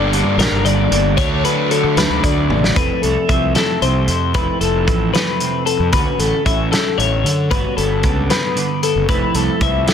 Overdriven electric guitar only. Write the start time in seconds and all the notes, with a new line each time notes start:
Already playing: G2 D3 G3 A#3 D4
1.17 D3 F#3 A3 D4